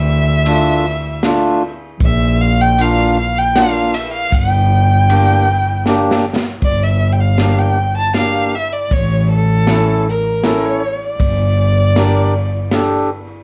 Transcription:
Already playing: double bass D2, violin E5
0.46 accordion A3 D4 F4, ride
1.23 accordion A3 D4 F4, snare, ride
2.00 double bass A#1, kick, ride
2.06 violin E5
2.41 violin F5
2.61 violin G5
2.79 accordion A#3 D4 F4, violin F5, ride
3.19 violin F5
3.38 violin G5
3.56 accordion A#3 D4 F4, violin F5, snare, ride
3.94 violin E5, ride
4.14 violin F5
4.32 double bass G1, violin G5, kick, ride
5.10 accordion A#3 D4 G4, ride
5.86 accordion A#3 D4 G4, snare
6.11 snare
6.36 snare
6.62 double bass G1, violin D5, kick, ride
6.83 violin E5
7.12 violin G5
7.20 violin F5
7.38 accordion A#3 D4 G4, snare, ride
7.58 violin G5
7.97 violin A5
8.14 accordion A#3 D4 G4, violin F5, snare, ride
8.55 violin E5
8.72 violin D5
8.91 double bass A1, violin C#5, kick, ride
9.30 violin A4
9.67 accordion C#4 E4 A4, snare, ride
10.09 violin A#4
10.43 accordion C#4 E4 A4, snare, ride
10.65 violin C#5
11.05 violin D5
11.20 double bass G1, kick, ride
11.96 accordion D4 G4 A#4, snare, ride
12.71 accordion D4 G4 A4, snare, ride

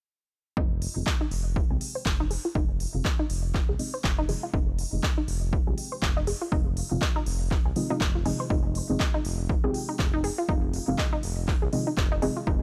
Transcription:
0.57 analog synth bass F1, synth stab C4 D#4 F4 G#4 D#5, synth arpeggio sound D#4, kick
0.82 open hi-hat
0.96 analog synth bass F1, synth stab C4 D#4 F4 G#4 D#5
1.07 synth arpeggio sound D#5, kick, clap
1.21 synth arpeggio sound D#4
1.31 analog synth bass F1, open hi-hat
1.56 kick
1.70 analog synth bass C2, synth stab C4 D#4 F4 G#4 G5, synth arpeggio sound G#4
1.81 open hi-hat
1.95 synth arpeggio sound C5
2.06 analog synth bass F1, kick, clap
2.20 synth arpeggio sound D#4
2.31 synth arpeggio sound G#4, open hi-hat
2.45 synth arpeggio sound F4
2.55 analog synth bass F1, synth stab C4 D#4 F4, synth arpeggio sound D#4, kick
2.80 open hi-hat
2.95 analog synth bass F1, synth stab C4 D#4 F4 G#4 F5
3.05 synth arpeggio sound D#5, kick, clap
3.19 synth arpeggio sound D#4
3.30 analog synth bass F1, open hi-hat
3.54 kick, clap
3.69 analog synth bass C2, synth arpeggio sound G#4
3.79 synth stab C4 D#4 F4 G#4 D#5, open hi-hat
3.94 synth arpeggio sound C5
4.04 analog synth bass F1, kick, clap
4.18 synth arpeggio sound D#4
4.29 synth stab C4 D#4 F4 G#4 D#5, synth arpeggio sound G#4, open hi-hat
4.43 synth arpeggio sound F4
4.54 analog synth bass F1, synth stab C4 D#4 F4 G#4 D#5, synth arpeggio sound D#4, kick
4.78 open hi-hat
4.93 analog synth bass F1, synth stab C4 D#4 F4 G#4 D#5
5.03 synth arpeggio sound D#5, kick, clap
5.18 synth arpeggio sound D#4
5.28 analog synth bass F1, open hi-hat
5.53 kick
5.67 analog synth bass C2, synth stab C4 D#4 F4 G#4 G5, synth arpeggio sound G#4
5.78 open hi-hat
5.92 synth arpeggio sound C5
6.02 analog synth bass F1, kick, clap
6.17 synth arpeggio sound D#4
6.27 synth arpeggio sound G#4, open hi-hat
6.42 synth arpeggio sound F4
6.52 analog synth bass F1, synth stab C4 D#4 F4 G#4 F5, synth arpeggio sound D#4, kick
6.77 open hi-hat
6.91 analog synth bass F1, synth stab C4 D#4 F4 G#4 F5
7.02 synth arpeggio sound D#5, kick, clap
7.16 synth arpeggio sound D#4
7.26 analog synth bass F1, open hi-hat
7.51 kick, clap
7.65 analog synth bass C2, synth arpeggio sound G#4
7.76 synth stab C4 D#4 F4 G#4 D#5, open hi-hat
7.90 synth stab C4 D#4 F4 G#4 F5, synth arpeggio sound D#4
8.01 analog synth bass F1, synth arpeggio sound D#4, kick, clap
8.15 synth arpeggio sound F4
8.26 synth stab C4 D#4 F4 G#4 D#5, synth arpeggio sound G#4, open hi-hat
8.40 synth arpeggio sound C5
8.50 analog synth bass F1, synth stab C4 D#4 F4 G#4 D#5, synth arpeggio sound D#4, kick
8.75 open hi-hat
8.89 analog synth bass F1, synth stab C4 D#4 F4 G#4 D#5
9.00 synth arpeggio sound D#5, kick, clap
9.14 synth arpeggio sound D#4
9.25 analog synth bass F1, open hi-hat
9.49 kick
9.64 analog synth bass C2, synth stab C4 D#4 F4 G#4 G5, synth arpeggio sound G#4
9.74 open hi-hat
9.89 synth arpeggio sound D#4
9.99 analog synth bass F1, kick, clap
10.14 synth arpeggio sound D#4
10.24 synth arpeggio sound G#4, open hi-hat
10.38 synth arpeggio sound F4
10.49 analog synth bass F1, synth stab C4 D#4 F4 G#4 F5, synth arpeggio sound D#4, kick
10.73 open hi-hat
10.88 analog synth bass F1, synth stab C4 D#4 F4 G#4 F5
10.98 synth arpeggio sound D#5, kick, clap
11.13 synth arpeggio sound D#4
11.23 analog synth bass F1, open hi-hat
11.48 kick, clap
11.62 analog synth bass C2, synth arpeggio sound G#4
11.73 synth stab C4 D#4 F4 G#4 D#5, open hi-hat
11.87 synth arpeggio sound D#4
11.97 analog synth bass F1, kick, clap
12.12 synth arpeggio sound D#4
12.22 synth stab C4 D#4 F4 G#4 D#5, synth arpeggio sound G#4, open hi-hat
12.37 synth arpeggio sound F4
12.47 analog synth bass F1, synth stab C4 D#4 F4 G#4 D#5, synth arpeggio sound D#4, kick

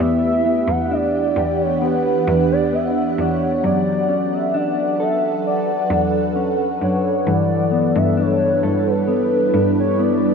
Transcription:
Already playing: clean electric guitar G4, ambient pad G4
0.00 cello E2, ambient pad E3 B3 D4 F#5, clean electric guitar B3, soft synth lead E5
0.45 clean electric guitar B3
0.68 cello E2, soft synth lead F#5
0.91 clean electric guitar D4, soft synth lead D5
1.36 cello E2, clean electric guitar G4
1.61 soft synth lead C#5
1.82 clean electric guitar B3, soft synth lead B4
2.27 cello E2, clean electric guitar D4
2.52 soft synth lead D5
2.73 clean electric guitar B3, soft synth lead E5
3.18 cello E2, clean electric guitar D4, soft synth lead C#5
3.63 cello F#2, clean electric guitar F#3, ambient pad F#3 A4 B4, soft synth lead D5
4.09 clean electric guitar C#4
4.34 soft synth lead E5
4.54 clean electric guitar D4, soft synth lead D5
5.00 clean electric guitar A4, soft synth lead E5
5.47 soft synth lead D5
5.90 cello E2, clean electric guitar D4
6.36 clean electric guitar C#4
6.81 cello F#2, clean electric guitar D4, soft synth lead C#5
7.26 cello G2, clean electric guitar E3, ambient pad G3 D4 E4 A4 B4, soft synth lead D5
7.72 clean electric guitar B3
7.95 cello G2, soft synth lead E5
8.17 clean electric guitar D4, soft synth lead C#5
8.63 cello G2, clean electric guitar A4
8.88 soft synth lead B4
9.08 clean electric guitar B3, ambient pad G4, soft synth lead B4
9.53 cello G2, clean electric guitar D4
9.79 soft synth lead C#5
9.99 clean electric guitar B3, soft synth lead D5

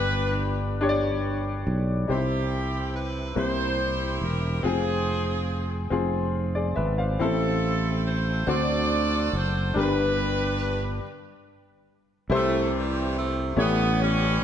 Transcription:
Already playing: fretless electric bass G1, grand piano G2 D4 G4 B4, saxophone section D4 G4 B4
0.81 grand piano D4 G4 C#5
0.89 grand piano D5
1.67 fretless electric bass B1
2.07 fretless electric bass C2, grand piano C3 D#4 G4 C5, saxophone section C4 E4 G4
2.14 grand piano E4
2.95 saxophone section B4
3.35 fretless electric bass C2, grand piano C3 A#3 C4 E4 G4 C5, saxophone section E4 G4 C5
4.21 fretless electric bass E1, saxophone section A#4
4.63 fretless electric bass F1, grand piano C4 F4 G#4, saxophone section C4 F4 G#4
5.90 fretless electric bass F1, grand piano C4 F4 G#4
6.55 grand piano G#4 D5
6.76 fretless electric bass G#1, grand piano B4 E5
6.98 grand piano C5 F5
7.19 fretless electric bass A1, grand piano A2 C4 E4 A4, saxophone section C4 E4 A4
8.07 saxophone section C5
8.47 fretless electric bass D2, grand piano D3 A3 C4 D4 F#4 C5, saxophone section F#4 A4 D5
9.33 fretless electric bass F#1, saxophone section C5
9.74 fretless electric bass G1, grand piano G2 D4 G4 A#4, saxophone section D4 G4
9.79 saxophone section B4, grand piano B4
12.30 fretless electric bass C2, grand piano C3 E4 G4 C5, saxophone section C3 E3
12.34 saxophone section A3
12.77 saxophone section G3
13.18 saxophone section A3
13.56 fretless electric bass A1, grand piano A2 A3 C#4 E4 G4 C#5, saxophone section E3 G3 B3
14.02 saxophone section E3 G3 C#4

